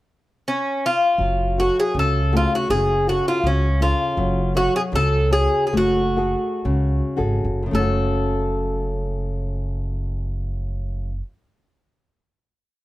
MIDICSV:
0, 0, Header, 1, 4, 480
1, 0, Start_track
1, 0, Key_signature, 3, "minor"
1, 0, Tempo, 746269
1, 764, Time_signature, 2, 2, 24, 8
1, 3170, Tempo, 815217
1, 3650, Tempo, 925926
1, 4130, Tempo, 1079137
1, 4610, Tempo, 1127820
1, 6050, Tempo, 1165049
1, 6754, End_track
2, 0, Start_track
2, 0, Title_t, "Bouzouki"
2, 0, Program_c, 0, 25
2, 308, Note_on_c, 0, 61, 70
2, 540, Note_off_c, 0, 61, 0
2, 553, Note_on_c, 0, 65, 73
2, 1024, Note_off_c, 0, 65, 0
2, 1027, Note_on_c, 0, 66, 66
2, 1144, Note_off_c, 0, 66, 0
2, 1155, Note_on_c, 0, 68, 72
2, 1269, Note_off_c, 0, 68, 0
2, 1281, Note_on_c, 0, 69, 74
2, 1519, Note_off_c, 0, 69, 0
2, 1522, Note_on_c, 0, 65, 69
2, 1634, Note_off_c, 0, 65, 0
2, 1641, Note_on_c, 0, 66, 69
2, 1737, Note_off_c, 0, 66, 0
2, 1739, Note_on_c, 0, 68, 79
2, 1985, Note_off_c, 0, 68, 0
2, 1988, Note_on_c, 0, 66, 74
2, 2105, Note_off_c, 0, 66, 0
2, 2110, Note_on_c, 0, 65, 69
2, 2225, Note_off_c, 0, 65, 0
2, 2229, Note_on_c, 0, 61, 65
2, 2443, Note_off_c, 0, 61, 0
2, 2458, Note_on_c, 0, 65, 75
2, 2902, Note_off_c, 0, 65, 0
2, 2938, Note_on_c, 0, 66, 80
2, 3056, Note_off_c, 0, 66, 0
2, 3061, Note_on_c, 0, 68, 79
2, 3093, Note_off_c, 0, 68, 0
2, 3185, Note_on_c, 0, 69, 81
2, 3402, Note_off_c, 0, 69, 0
2, 3404, Note_on_c, 0, 68, 75
2, 3589, Note_off_c, 0, 68, 0
2, 3605, Note_on_c, 0, 68, 53
2, 3650, Note_off_c, 0, 68, 0
2, 3665, Note_on_c, 0, 66, 73
2, 4349, Note_off_c, 0, 66, 0
2, 4609, Note_on_c, 0, 69, 58
2, 6083, Note_off_c, 0, 69, 0
2, 6754, End_track
3, 0, Start_track
3, 0, Title_t, "Nylon-string guitar"
3, 0, Program_c, 1, 24
3, 759, Note_on_c, 1, 54, 43
3, 1015, Note_on_c, 1, 66, 36
3, 1024, Note_on_c, 1, 69, 40
3, 1237, Note_off_c, 1, 54, 0
3, 1248, Note_on_c, 1, 49, 56
3, 1404, Note_off_c, 1, 66, 0
3, 1409, Note_off_c, 1, 69, 0
3, 1496, Note_on_c, 1, 57, 49
3, 1497, Note_on_c, 1, 66, 46
3, 1501, Note_on_c, 1, 68, 38
3, 1721, Note_off_c, 1, 49, 0
3, 1734, Note_on_c, 1, 49, 56
3, 1880, Note_off_c, 1, 66, 0
3, 1881, Note_off_c, 1, 57, 0
3, 1883, Note_off_c, 1, 68, 0
3, 1976, Note_on_c, 1, 66, 40
3, 1981, Note_on_c, 1, 68, 39
3, 1982, Note_on_c, 1, 69, 44
3, 2199, Note_off_c, 1, 49, 0
3, 2212, Note_on_c, 1, 49, 60
3, 2357, Note_off_c, 1, 66, 0
3, 2358, Note_off_c, 1, 68, 0
3, 2360, Note_off_c, 1, 69, 0
3, 2446, Note_on_c, 1, 61, 49
3, 2449, Note_on_c, 1, 68, 43
3, 2455, Note_on_c, 1, 69, 53
3, 2672, Note_off_c, 1, 49, 0
3, 2688, Note_on_c, 1, 54, 58
3, 2827, Note_off_c, 1, 61, 0
3, 2829, Note_off_c, 1, 68, 0
3, 2832, Note_off_c, 1, 69, 0
3, 2924, Note_on_c, 1, 66, 41
3, 2926, Note_on_c, 1, 69, 48
3, 3155, Note_off_c, 1, 54, 0
3, 3163, Note_on_c, 1, 49, 61
3, 3310, Note_off_c, 1, 69, 0
3, 3311, Note_off_c, 1, 66, 0
3, 3393, Note_on_c, 1, 66, 48
3, 3393, Note_on_c, 1, 68, 44
3, 3398, Note_on_c, 1, 73, 51
3, 3632, Note_off_c, 1, 49, 0
3, 3640, Note_on_c, 1, 57, 51
3, 3785, Note_off_c, 1, 68, 0
3, 3786, Note_off_c, 1, 66, 0
3, 3788, Note_off_c, 1, 73, 0
3, 3869, Note_on_c, 1, 66, 41
3, 3873, Note_on_c, 1, 69, 43
3, 3875, Note_on_c, 1, 68, 40
3, 4111, Note_off_c, 1, 57, 0
3, 4119, Note_on_c, 1, 49, 58
3, 4265, Note_off_c, 1, 66, 0
3, 4267, Note_off_c, 1, 69, 0
3, 4268, Note_off_c, 1, 68, 0
3, 4350, Note_on_c, 1, 66, 46
3, 4353, Note_on_c, 1, 68, 42
3, 4355, Note_on_c, 1, 69, 50
3, 4554, Note_off_c, 1, 66, 0
3, 4555, Note_off_c, 1, 68, 0
3, 4556, Note_off_c, 1, 69, 0
3, 4556, Note_on_c, 1, 42, 45
3, 4566, Note_off_c, 1, 49, 0
3, 4571, Note_on_c, 1, 49, 40
3, 4593, Note_on_c, 1, 57, 39
3, 4612, Note_on_c, 1, 61, 39
3, 4627, Note_on_c, 1, 66, 42
3, 4643, Note_on_c, 1, 69, 47
3, 6033, Note_off_c, 1, 42, 0
3, 6047, Note_off_c, 1, 49, 0
3, 6068, Note_off_c, 1, 57, 0
3, 6085, Note_off_c, 1, 61, 0
3, 6100, Note_off_c, 1, 66, 0
3, 6116, Note_off_c, 1, 69, 0
3, 6754, End_track
4, 0, Start_track
4, 0, Title_t, "Upright bass"
4, 0, Program_c, 2, 32
4, 762, Note_on_c, 2, 30, 70
4, 1081, Note_off_c, 2, 30, 0
4, 1253, Note_on_c, 2, 37, 72
4, 1568, Note_off_c, 2, 37, 0
4, 1736, Note_on_c, 2, 30, 74
4, 2046, Note_off_c, 2, 30, 0
4, 2210, Note_on_c, 2, 37, 74
4, 2518, Note_off_c, 2, 37, 0
4, 2684, Note_on_c, 2, 30, 81
4, 2998, Note_off_c, 2, 30, 0
4, 3170, Note_on_c, 2, 37, 83
4, 3481, Note_off_c, 2, 37, 0
4, 3644, Note_on_c, 2, 30, 77
4, 3958, Note_off_c, 2, 30, 0
4, 4121, Note_on_c, 2, 37, 76
4, 4274, Note_off_c, 2, 37, 0
4, 4359, Note_on_c, 2, 32, 62
4, 4469, Note_off_c, 2, 32, 0
4, 4475, Note_on_c, 2, 30, 62
4, 4593, Note_off_c, 2, 30, 0
4, 4603, Note_on_c, 2, 30, 78
4, 6077, Note_off_c, 2, 30, 0
4, 6754, End_track
0, 0, End_of_file